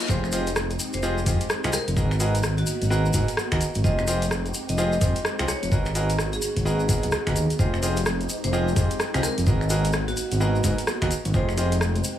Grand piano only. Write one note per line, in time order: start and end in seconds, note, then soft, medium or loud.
0.09 0.23 F4 medium
0.09 0.23 G4 medium
0.09 0.23 G#4 medium
0.09 0.23 C5 medium
0.09 0.23 D#5 medium
0.33 0.47 F4 medium
0.33 0.47 G4 medium
0.33 0.47 G#4 medium
0.33 0.47 C5 medium
0.33 0.47 D#5 loud
1.03 1.17 F4 loud
1.03 1.17 G4 medium
1.03 1.17 G#4 medium
1.03 1.17 C5 medium
1.03 1.17 D#5 loud
1.26 1.40 F4 medium
1.26 1.40 G4 medium
1.26 1.40 G#4 medium
1.26 1.40 C5 medium
1.26 1.40 D#5 medium
1.64 1.73 F4 medium
1.64 1.73 G4 medium
1.64 1.73 G#4 medium
1.64 1.73 C5 medium
1.64 1.73 D#5 loud
1.97 2.11 F#4 medium
1.97 2.11 G#4 medium
1.97 2.11 A#4 medium
1.97 2.11 B4 medium
1.97 2.11 D#5 medium
2.20 2.34 F#4 medium
2.20 2.34 G#4 medium
2.20 2.34 A#4 medium
2.20 2.34 B4 medium
2.20 2.34 D#5 loud
2.90 3.04 F#4 loud
2.90 3.04 G#4 medium
2.90 3.04 A#4 medium
2.90 3.04 B4 loud
2.90 3.04 D#5 loud
3.14 3.28 F#4 medium
3.14 3.28 G#4 medium
3.14 3.28 A#4 medium
3.14 3.28 B4 medium
3.14 3.28 D#5 medium
3.52 3.60 F#4 medium
3.52 3.60 G#4 medium
3.52 3.60 A#4 medium
3.52 3.60 B4 medium
3.52 3.60 D#5 loud
3.84 3.98 F4 medium
3.84 3.98 G4 medium
3.84 3.98 G#4 medium
3.84 3.98 C5 medium
3.84 3.98 D#5 medium
4.08 4.22 F4 medium
4.08 4.22 G4 medium
4.08 4.22 G#4 medium
4.08 4.22 C5 medium
4.08 4.22 D#5 loud
4.78 4.92 F4 loud
4.78 4.92 G4 medium
4.78 4.92 G#4 medium
4.78 4.92 C5 medium
4.78 4.92 D#5 loud
5.01 5.15 F4 medium
5.01 5.15 G4 medium
5.01 5.15 G#4 medium
5.01 5.15 C5 medium
5.01 5.15 D#5 medium
5.39 5.48 F4 medium
5.39 5.48 G4 medium
5.39 5.48 G#4 medium
5.39 5.48 C5 medium
5.39 5.48 D#5 loud
5.72 5.86 F#4 medium
5.72 5.86 G#4 medium
5.72 5.86 A#4 medium
5.72 5.86 B4 medium
5.72 5.86 D#5 medium
5.95 6.09 F#4 medium
5.95 6.09 G#4 medium
5.95 6.09 A#4 medium
5.95 6.09 B4 medium
5.95 6.09 D#5 loud
6.65 6.79 F#4 loud
6.65 6.79 G#4 medium
6.65 6.79 A#4 medium
6.65 6.79 B4 medium
6.65 6.79 D#5 loud
6.89 7.03 F#4 medium
6.89 7.03 G#4 medium
6.89 7.03 A#4 medium
6.89 7.03 B4 medium
6.89 7.03 D#5 medium
7.27 7.35 F#4 medium
7.27 7.35 G#4 medium
7.27 7.35 A#4 medium
7.27 7.35 B4 medium
7.27 7.35 D#5 medium
7.59 7.73 F4 medium
7.59 7.73 G4 medium
7.59 7.73 G#4 medium
7.59 7.73 C5 medium
7.59 7.73 D#5 medium
7.83 7.97 F4 medium
7.83 7.97 G4 medium
7.83 7.97 G#4 medium
7.83 7.97 C5 medium
7.83 7.97 D#5 loud
8.53 8.67 F4 loud
8.53 8.67 G4 medium
8.53 8.67 G#4 medium
8.53 8.67 C5 medium
8.53 8.67 D#5 loud
8.76 8.90 F4 medium
8.76 8.90 G4 medium
8.76 8.90 G#4 medium
8.76 8.90 C5 medium
8.76 8.90 D#5 medium
9.14 9.23 F4 medium
9.14 9.23 G4 medium
9.14 9.23 G#4 medium
9.14 9.23 C5 medium
9.14 9.23 D#5 loud
9.47 9.61 F#4 medium
9.47 9.61 G#4 medium
9.47 9.61 A#4 medium
9.47 9.61 B4 medium
9.47 9.61 D#5 medium
9.70 9.84 F#4 medium
9.70 9.84 G#4 medium
9.70 9.84 A#4 medium
9.70 9.84 B4 medium
9.70 9.84 D#5 loud
10.40 10.54 F#4 loud
10.40 10.54 G#4 medium
10.40 10.54 A#4 medium
10.40 10.54 B4 loud
10.40 10.54 D#5 loud
10.64 10.78 F#4 medium
10.64 10.78 G#4 medium
10.64 10.78 A#4 medium
10.64 10.78 B4 medium
10.64 10.78 D#5 medium
11.02 11.10 F#4 medium
11.02 11.10 G#4 medium
11.02 11.10 A#4 medium
11.02 11.10 B4 medium
11.02 11.10 D#5 loud
11.34 11.48 F4 medium
11.34 11.48 G4 medium
11.34 11.48 G#4 medium
11.34 11.48 C5 medium
11.34 11.48 D#5 medium
11.58 11.72 F4 medium
11.58 11.72 G4 medium
11.58 11.72 G#4 medium
11.58 11.72 C5 medium
11.58 11.72 D#5 loud